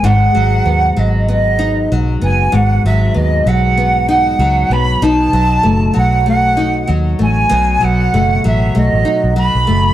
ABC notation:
X:1
M:4/4
L:1/16
Q:"Swing 16ths" 1/4=96
K:G#phr
V:1 name="Flute"
f6 d2 d4 z2 g2 | f2 e2 d2 f4 f4 b2 | a6 f2 f4 z2 g2- | g2 f4 e2 d4 b4 |]
V:2 name="Nylon-string guitar"
[G,,D]2 F,2 B,2 F,2 B,2 D2 F,2 B,2 | G,,2 F,2 B,2 F,2 B,2 D2 F,2 B,2 | [B,,D]2 F,2 A,2 F,2 A,2 D2 F,2 A,2 | B,,2 F,2 A,2 F,2 A,2 D2 F,2 A,2 |]
V:3 name="Fingered electric bass" clef=bass
G,,,2 G,,,2 D,,2 G,,,6 B,,,2 F,,,2 | G,,,2 G,,,2 D,,2 B,,,6 C,,2 B,,,2 | B,,,2 B,,,2 F,,,2 B,,,6 D,,2 A,,,2 | B,,,2 B,,,2 F,,,2 A,,,2 B,,, A,,, z B,,,2 B,,, F,,,2 |]